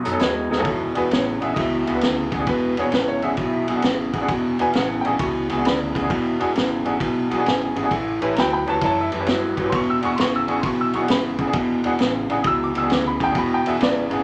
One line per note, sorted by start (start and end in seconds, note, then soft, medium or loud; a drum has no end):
0.03 0.20 F#2 medium
0.03 0.19 B2 medium
0.03 0.19 F#3 medium
0.03 0.08 D#4 medium
0.03 0.09 A4 medium
0.03 closed hi-hat medium
0.11 0.20 C#4 medium
0.11 0.20 D#4 medium
0.11 0.21 A4 medium
0.19 0.49 D#2 medium
0.19 0.48 B2 medium
0.19 0.48 G#3 medium
0.19 0.63 B5 medium
0.19 snare loud
0.19 closed hi-hat medium
0.49 0.65 D#2 medium
0.49 0.65 B2 medium
0.49 0.65 G#3 medium
0.49 0.54 D#4 soft
0.49 0.55 A4 medium
0.49 snare medium
0.58 0.66 C#4 medium
0.58 0.66 D#4 medium
0.58 0.67 A4 medium
0.58 floor tom medium
0.65 0.94 E1 medium
0.65 0.93 E2 medium
0.65 0.93 B2 medium
0.65 kick loud
0.65 ride medium
0.94 1.11 E1 medium
0.94 1.10 E2 medium
0.94 1.10 B2 medium
0.94 1.03 D4 medium
0.94 1.03 F#4 medium
0.94 1.04 G#4 medium
0.94 1.12 B4 loud
0.94 ride medium
1.11 1.40 A1 loud
1.11 1.39 E2 medium
1.11 1.39 C#3 medium
1.11 1.42 C#5 medium
1.11 snare medium
1.11 ride medium
1.40 1.56 A1 medium
1.40 1.55 E2 medium
1.40 1.55 C#3 medium
1.40 1.49 D4 medium
1.40 1.49 F#4 medium
1.40 1.49 G#4 medium
1.40 1.56 E5 medium
1.40 ride medium
1.54 1.85 C#2 medium
1.54 1.84 E2 medium
1.54 1.84 B2 medium
1.54 1.58 D#5 medium
1.54 2.01 E5 loud
1.54 kick loud
1.54 ride medium
1.58 snare soft
1.86 2.01 C#2 medium
1.86 2.01 E2 medium
1.86 2.01 B2 medium
1.86 1.91 F#4 soft
1.86 1.92 G#4 soft
1.86 ride medium
1.94 2.02 D4 medium
1.94 2.02 F#4 medium
1.94 2.03 B4 medium
2.01 2.30 D2 medium
2.01 2.30 E2 medium
2.01 2.30 C#3 medium
2.01 snare medium
2.01 ride medium
2.32 2.46 D2 medium
2.32 2.46 E2 medium
2.32 2.46 C#3 medium
2.32 2.36 F#4 medium
2.32 2.37 G#4 medium
2.32 kick medium
2.32 ride medium
2.39 2.47 D4 medium
2.39 2.47 F#4 medium
2.39 2.48 G#4 medium
2.47 2.75 E1 medium
2.47 2.75 E2 medium
2.47 2.75 B2 medium
2.47 2.78 B4 loud
2.47 kick medium
2.47 ride medium
2.77 2.92 E1 medium
2.77 2.91 E2 medium
2.77 2.92 B2 medium
2.77 2.86 D4 medium
2.77 2.86 F#4 medium
2.77 2.86 G#4 medium
2.77 2.94 C#5 medium
2.77 ride medium
2.92 3.21 G#1 loud
2.92 3.20 E2 medium
2.92 3.20 C#3 medium
2.92 3.08 B4 medium
2.92 snare loud
2.92 ride medium
3.08 3.23 C#5 medium
3.22 3.37 G#1 medium
3.22 3.37 E2 medium
3.22 3.37 C#3 medium
3.22 3.30 D4 medium
3.22 3.31 F#4 medium
3.22 3.31 G#4 medium
3.22 4.11 E5 loud
3.22 ride soft
3.37 3.66 B1 medium
3.37 3.66 E2 medium
3.37 3.66 B2 medium
3.37 kick loud
3.37 ride medium
3.67 3.83 B1 medium
3.67 3.82 E2 medium
3.67 3.83 B2 medium
3.67 3.72 F#4 soft
3.67 3.72 G#4 soft
3.67 ride medium
3.75 3.83 D4 medium
3.75 3.84 F#4 medium
3.75 3.84 G#4 medium
3.82 4.12 G#1 medium
3.82 4.11 E2 medium
3.82 4.11 C#3 medium
3.82 snare loud
3.82 ride medium
4.13 4.28 G#1 medium
4.13 4.27 E2 medium
4.13 4.28 C#3 medium
4.13 4.17 F#4 medium
4.13 4.18 G#4 medium
4.13 kick medium
4.13 ride medium
4.21 4.29 D4 medium
4.21 4.29 F#4 medium
4.21 4.30 G#4 medium
4.29 4.57 E1 medium
4.29 4.57 E2 medium
4.29 4.57 B2 loud
4.29 kick loud
4.29 ride medium
4.59 4.74 E1 medium
4.59 4.73 E2 medium
4.59 4.73 B2 medium
4.59 4.67 D4 medium
4.59 4.67 F#4 medium
4.59 4.68 B4 medium
4.59 4.75 G#5 loud
4.59 ride medium
4.72 5.02 E2 medium
4.72 5.02 C#3 medium
4.72 4.75 F5 medium
4.72 snare loud
4.72 ride medium
4.76 5.03 A1 medium
4.76 5.05 F#5 medium
5.01 5.12 D4 medium
5.01 5.03 G5 medium
5.01 ride medium
5.06 5.19 A1 medium
5.06 5.19 E2 medium
5.06 5.19 C#3 medium
5.06 5.13 F#4 medium
5.06 5.13 G#4 medium
5.06 5.20 G#5 medium
5.19 5.47 C#2 medium
5.19 5.47 E2 medium
5.19 5.47 B2 medium
5.19 5.64 C#6 medium
5.19 kick loud
5.19 ride medium
5.49 5.65 C#2 medium
5.49 5.63 E2 medium
5.49 5.64 B2 medium
5.49 5.53 F#4 soft
5.49 5.54 G#4 medium
5.49 ride medium
5.57 5.65 D4 medium
5.57 5.65 F#4 medium
5.57 5.65 G#4 medium
5.64 5.92 E2 medium
5.64 5.92 C#3 medium
5.64 6.97 D5 medium
5.64 6.98 B5 medium
5.64 snare loud
5.64 ride medium
5.94 6.09 D2 medium
5.94 6.08 E2 medium
5.94 6.09 C#3 medium
5.94 5.99 F#4 soft
5.94 6.00 G#4 soft
5.94 kick medium
5.94 ride medium
6.02 6.10 D4 medium
6.02 6.10 F#4 medium
6.02 6.11 G#4 medium
6.10 6.38 E1 medium
6.10 6.37 E2 medium
6.10 6.38 B2 loud
6.10 kick loud
6.10 ride medium
6.40 6.55 E1 medium
6.40 6.54 E2 medium
6.40 6.54 B2 medium
6.40 6.48 D4 medium
6.40 6.48 F#4 medium
6.40 6.49 G#4 medium
6.40 ride medium
6.55 6.84 G#1 loud
6.55 6.83 E2 medium
6.55 6.83 C#3 medium
6.55 snare medium
6.55 ride medium
6.85 7.00 G#1 medium
6.85 6.99 E2 medium
6.85 6.99 C#3 medium
6.85 6.93 D4 medium
6.85 6.94 F#4 medium
6.85 6.94 G#4 medium
6.85 ride soft
7.00 7.29 B1 medium
7.00 7.28 E2 medium
7.00 7.28 B2 medium
7.00 kick loud
7.00 ride medium
7.30 7.46 B1 medium
7.30 7.44 E2 medium
7.30 7.45 B2 medium
7.30 7.35 F#4 soft
7.30 7.35 G#4 medium
7.30 ride medium
7.37 7.46 D4 medium
7.37 7.46 F#4 medium
7.37 7.47 G#4 medium
7.46 7.74 G#1 medium
7.46 7.73 E2 medium
7.46 7.74 C#3 medium
7.46 7.88 G#5 medium
7.46 snare medium
7.46 ride medium
7.76 7.91 G#1 medium
7.76 7.90 E2 medium
7.76 7.90 C#3 medium
7.76 7.80 F#4 soft
7.76 7.81 G#4 soft
7.76 ride medium
7.83 7.91 D4 medium
7.83 7.92 F#4 medium
7.83 7.92 G#4 medium
7.91 8.19 A1 medium
7.91 8.19 A2 medium
7.91 8.19 E3 loud
7.91 kick loud
7.91 ride medium
8.22 8.36 A1 medium
8.22 8.36 A2 medium
8.22 8.36 E3 medium
8.22 8.29 C#4 medium
8.22 8.30 G4 medium
8.22 8.30 B4 medium
8.22 ride medium
8.35 8.65 D2 medium
8.35 8.65 A2 medium
8.35 8.65 F#3 medium
8.35 8.38 A#5 medium
8.35 snare medium
8.35 ride medium
8.40 8.52 G5 medium
8.40 8.52 B5 loud
8.53 8.67 G5 medium
8.53 8.68 B5 loud
8.67 8.81 D2 medium
8.67 8.81 A2 medium
8.67 8.81 F#3 medium
8.67 8.75 C#4 medium
8.67 8.75 G4 medium
8.67 8.75 B4 medium
8.67 8.82 C#5 medium
8.67 8.83 A5 loud
8.67 ride medium
8.81 9.10 F#2 medium
8.81 9.10 A2 medium
8.81 9.10 E3 medium
8.81 8.98 C#5 medium
8.81 kick loud
8.81 snare soft
8.81 ride medium
8.85 8.99 A5 loud
9.01 9.24 E5 loud
9.12 9.27 F#2 medium
9.12 9.26 A2 medium
9.12 9.27 E3 medium
9.12 9.16 G4 soft
9.12 9.17 B4 soft
9.12 ride medium
9.20 9.28 C#4 medium
9.20 9.28 G4 medium
9.20 9.28 B4 medium
9.26 9.56 G2 loud
9.26 9.55 A2 medium
9.26 9.55 F#3 medium
9.26 snare loud
9.26 ride medium
9.57 9.71 G2 medium
9.57 9.72 A2 medium
9.57 9.72 F#3 medium
9.57 9.61 G4 medium
9.57 9.62 B4 medium
9.57 kick medium
9.57 ride medium
9.63 9.72 C#4 medium
9.63 9.73 G4 medium
9.63 9.73 B4 medium
9.70 10.01 E1 medium
9.70 10.00 E2 medium
9.70 10.00 B2 loud
9.70 9.73 C6 medium
9.70 kick loud
9.70 ride medium
9.75 9.89 C#6 loud
9.90 10.04 E6 medium
10.01 10.17 E1 medium
10.01 10.17 E2 medium
10.01 10.17 B2 medium
10.01 10.10 D4 medium
10.01 10.11 F#4 medium
10.01 10.11 G#4 medium
10.01 10.19 C#6 loud
10.01 ride medium
10.16 10.46 G#1 loud
10.16 10.46 E2 medium
10.16 10.46 C#3 loud
10.16 10.19 C6 medium
10.16 snare loud
10.16 ride medium
10.21 10.34 C#6 loud
10.36 10.49 E6 loud
10.47 10.63 G#1 medium
10.47 10.63 E2 medium
10.47 10.63 C#3 medium
10.47 10.56 D4 medium
10.47 10.56 F#4 medium
10.47 10.56 G#4 medium
10.47 10.64 C#6 loud
10.47 ride medium
10.61 10.91 B1 medium
10.61 10.92 E2 medium
10.61 10.65 C6 medium
10.61 kick loud
10.61 ride medium
10.66 10.92 B2 medium
10.66 10.79 C#6 medium
10.81 10.95 E6 loud
10.93 11.08 B1 medium
10.93 11.08 E2 medium
10.93 11.09 B2 medium
10.93 10.97 F#4 soft
10.93 10.98 G#4 medium
10.93 11.09 C#6 medium
10.93 ride medium
11.01 11.09 D4 medium
11.01 11.09 F#4 medium
11.01 11.09 G#4 medium
11.08 11.37 G#1 medium
11.08 11.37 E2 medium
11.08 11.37 C#3 medium
11.08 11.98 B5 loud
11.08 snare loud
11.08 ride medium
11.39 11.53 G#1 medium
11.39 11.53 E2 medium
11.39 11.53 C#3 medium
11.39 11.43 F#4 soft
11.39 11.44 G#4 soft
11.39 kick medium
11.39 ride medium
11.47 11.54 D4 medium
11.47 11.55 F#4 medium
11.47 11.55 G#4 medium
11.53 11.82 E1 medium
11.53 11.81 E2 medium
11.53 11.81 B2 loud
11.53 kick loud
11.53 ride medium
11.84 11.99 E1 medium
11.84 11.98 E2 medium
11.84 11.98 B2 medium
11.84 11.92 D4 medium
11.84 11.93 F#4 medium
11.84 11.93 G#4 medium
11.84 ride medium
11.99 12.28 A1 medium
11.99 12.27 E2 medium
11.99 12.27 C#3 loud
11.99 snare loud
11.99 ride medium
12.30 12.44 A1 medium
12.30 12.43 E2 medium
12.30 12.44 C#3 medium
12.30 12.37 D4 medium
12.30 12.38 F#4 medium
12.30 12.38 G#4 medium
12.30 ride medium
12.43 12.72 C#2 medium
12.43 12.72 E2 medium
12.43 12.72 B2 loud
12.43 12.46 D#6 medium
12.43 kick loud
12.43 ride medium
12.47 12.61 E6 loud
12.64 12.77 D6 loud
12.75 12.89 C#2 medium
12.75 12.89 E2 medium
12.75 12.89 B2 medium
12.75 12.79 F#4 soft
12.75 12.80 G#4 medium
12.75 12.91 E6 medium
12.75 ride medium
12.82 12.90 D4 medium
12.82 12.91 F#4 medium
12.82 12.91 G#4 medium
12.90 13.18 D2 loud
12.90 13.17 E2 medium
12.90 13.18 C#3 loud
12.90 snare loud
12.90 ride medium
12.94 13.07 D6 medium
13.07 13.21 B5 loud
13.20 13.34 D2 medium
13.20 13.33 E2 medium
13.20 13.34 C#3 medium
13.20 13.24 F#4 soft
13.20 13.25 G#4 soft
13.20 kick medium
13.20 ride medium
13.24 13.37 G5 loud
13.28 13.36 D4 medium
13.28 13.36 F#4 medium
13.28 13.37 G#4 medium
13.35 13.63 E1 loud
13.35 13.63 E2 medium
13.35 13.63 B2 loud
13.35 13.52 B5 medium
13.35 kick loud
13.35 ride medium
13.54 13.67 G5 medium
13.65 13.80 E1 medium
13.65 13.78 E2 medium
13.65 13.79 B2 medium
13.65 13.74 D4 medium
13.65 13.74 F#4 medium
13.65 13.75 G#4 medium
13.65 13.81 E5 loud
13.65 ride medium
13.79 14.09 G#1 medium
13.79 14.07 E2 medium
13.79 14.08 C#3 medium
13.79 14.23 B4 medium
13.79 14.23 D5 loud
13.79 snare loud
13.79 ride medium
14.09 14.23 G#1 medium
14.09 14.23 E2 medium
14.09 14.23 C#3 medium
14.09 14.18 D4 medium
14.09 14.19 F#4 medium
14.09 14.19 G#4 medium
14.09 ride medium